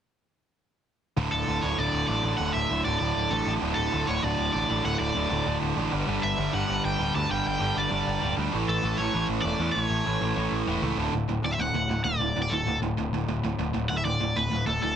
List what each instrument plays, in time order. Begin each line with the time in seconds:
1.17 picked electric bass D1, distorted electric guitar D2 A2 D3
1.32 picked electric bass D1, overdriven electric guitar A4
1.47 picked electric bass D1, distorted electric guitar D2 A2 D3
1.62 picked electric bass D1, distorted electric guitar D2 A2 D3, overdriven electric guitar C#5
1.78 picked electric bass D1, distorted electric guitar D2 A2 D3, overdriven electric guitar D5
1.93 picked electric bass D1
2.08 picked electric bass A1, distorted electric guitar D2 A2 D3, overdriven electric guitar D5
2.23 picked electric bass A1, distorted electric guitar D2 A2 D3
2.37 picked electric bass D1, distorted electric guitar D2 A2 D3, overdriven electric guitar F#5
2.53 picked electric bass D1, overdriven electric guitar E5
2.70 picked electric bass D1, distorted electric guitar D2 A2 D3
2.85 picked electric bass D1, distorted electric guitar D2 A2 D3, overdriven electric guitar D5
2.99 picked electric bass D1, distorted electric guitar D2 A2 D3, overdriven electric guitar D5
3.15 picked electric bass D1
3.30 picked electric bass A1, distorted electric guitar D2 A2 D3, overdriven electric guitar A4
3.47 picked electric bass A1, distorted electric guitar D2 A2 D3
3.62 picked electric bass D1, distorted electric guitar D2 A2 D3
3.75 picked electric bass D1, overdriven electric guitar A4
3.92 picked electric bass D1, distorted electric guitar D2 A2 D3
4.07 picked electric bass D1, distorted electric guitar D2 A2 D3, overdriven electric guitar C#5
4.22 picked electric bass D1, distorted electric guitar D2 A2 D3, overdriven electric guitar D5
4.39 picked electric bass D1
4.53 picked electric bass A1, distorted electric guitar D2 A2 D3, overdriven electric guitar D5
4.68 picked electric bass A1, distorted electric guitar D2 A2 D3
4.84 picked electric bass D1, distorted electric guitar D2 A2 D3, overdriven electric guitar F#5
4.99 picked electric bass D1, overdriven electric guitar D5
5.14 picked electric bass D1, distorted electric guitar D2 A2 D3
5.30 picked electric bass D1, distorted electric guitar D2 A2 D3
5.45 picked electric bass D1, distorted electric guitar D2 A2 D3
5.62 picked electric bass D1
5.76 picked electric bass A1, distorted electric guitar D2 A2 D3
5.91 picked electric bass G1, distorted electric guitar G2 D3 G3
6.07 picked electric bass G1, distorted electric guitar G2 D3 G3
6.23 picked electric bass G1, overdriven electric guitar E5
6.38 picked electric bass G1, distorted electric guitar G2 D3 G3
6.53 picked electric bass G1, distorted electric guitar G2 D3 G3, overdriven electric guitar F#5
6.68 picked electric bass G1, distorted electric guitar G2 D3 G3
6.85 picked electric bass G1, overdriven electric guitar G5
6.99 picked electric bass D1, distorted electric guitar G2 D3 G3
7.14 picked electric bass D2, distorted electric guitar G2 D3 G3, overdriven electric guitar A5
7.29 picked electric bass G1, distorted electric guitar G2 D3 G3, overdriven electric guitar G5
7.46 picked electric bass G1, overdriven electric guitar G5
7.60 picked electric bass G1, distorted electric guitar G2 D3 G3
7.75 picked electric bass G1, distorted electric guitar G2 D3 G3, overdriven electric guitar D5
7.90 picked electric bass G1, distorted electric guitar G2 D3 G3
8.07 picked electric bass G1
8.21 picked electric bass D1, distorted electric guitar G2 D3 G3
8.37 picked electric bass D2, distorted electric guitar G2 D3 G3
8.52 picked electric bass A1, distorted electric guitar A2 E3 A3
8.68 picked electric bass A1, overdriven electric guitar A4
8.82 picked electric bass A1, distorted electric guitar A2 E3 A3
8.98 picked electric bass A1, distorted electric guitar A2 E3 A3, overdriven electric guitar C#5
9.13 picked electric bass A1, distorted electric guitar A2 E3 A3
9.29 picked electric bass A1
9.42 picked electric bass E1, distorted electric guitar A2 E3 A3, overdriven electric guitar D5
9.59 picked electric bass E2, distorted electric guitar A2 E3 A3
9.72 picked electric bass A1, distorted electric guitar A2 E3, overdriven electric guitar C#5
9.76 distorted electric guitar A3
9.90 picked electric bass A1
10.05 picked electric bass A1, distorted electric guitar A2 E3 A3
10.21 picked electric bass A1, distorted electric guitar A2 E3 A3
10.36 picked electric bass A1, distorted electric guitar A2 E3 A3
10.52 picked electric bass A1
10.67 picked electric bass E1, distorted electric guitar A2 E3 A3
10.82 picked electric bass C#2, distorted electric guitar A2 E3 A3
10.97 picked electric bass D1, distorted electric guitar D2 A2 D3
11.13 picked electric bass D1, distorted electric guitar D2 A2
11.28 picked electric bass D1, distorted electric guitar D2 A2
11.42 picked electric bass D1, distorted electric guitar D2 A2, overdriven electric guitar D5
11.52 overdriven electric guitar E5
11.58 picked electric bass D1, distorted electric guitar D2 A2, overdriven electric guitar F#5
11.73 picked electric bass D1, distorted electric guitar D2 A2
11.88 picked electric bass D1, distorted electric guitar D2 A2
12.04 picked electric bass D1, distorted electric guitar D2 A2, overdriven electric guitar D5
12.20 picked electric bass D1, distorted electric guitar D2 A2
12.36 picked electric bass D1, distorted electric guitar D2 A2
12.42 overdriven electric guitar D5
12.50 picked electric bass D1, distorted electric guitar D2 A2, overdriven electric guitar A4
12.66 picked electric bass D1, distorted electric guitar D2 A2
12.82 picked electric bass D1, distorted electric guitar D2 A2
12.97 picked electric bass D1, distorted electric guitar D2 A2
13.13 picked electric bass D1, distorted electric guitar D2 A2
13.28 picked electric bass D1, distorted electric guitar D2 A2
13.43 picked electric bass D1, distorted electric guitar D2 A2
13.59 picked electric bass D1, distorted electric guitar D2 A2
13.73 picked electric bass D1, distorted electric guitar D2 A2
13.89 picked electric bass D1, distorted electric guitar D2 A2, overdriven electric guitar F#5
13.98 overdriven electric guitar E5
14.04 picked electric bass D1, distorted electric guitar D2 A2, overdriven electric guitar D5
14.20 picked electric bass D1, distorted electric guitar D2 A2
14.36 picked electric bass D1, distorted electric guitar D2 A2, overdriven electric guitar B4
14.50 picked electric bass D1, distorted electric guitar D2 A2
14.66 picked electric bass D1, distorted electric guitar D2 A2, overdriven electric guitar A4
14.81 picked electric bass D1, distorted electric guitar D2 A2, overdriven electric guitar A4